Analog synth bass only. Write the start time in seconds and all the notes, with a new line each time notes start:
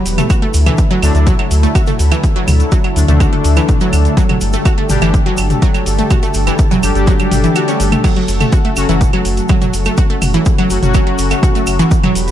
0.06 E1
0.54 D2
1.03 D2
1.15 D2
1.51 D2
1.99 D2
2.48 D2
2.96 D2
3.08 D2
3.45 D2
3.93 D2
4.41 G1
4.90 G1
5.02 G1
5.38 G1
5.86 G1
6.35 G1
6.83 G1
6.95 G1
7.32 G1
7.80 G1
8.28 F#1
8.77 F#1
8.89 F#1
9.25 F#1
9.74 F#1
10.22 F#1
10.70 F#1
10.83 F#1
11.19 F#1
11.67 F#1
12.16 E1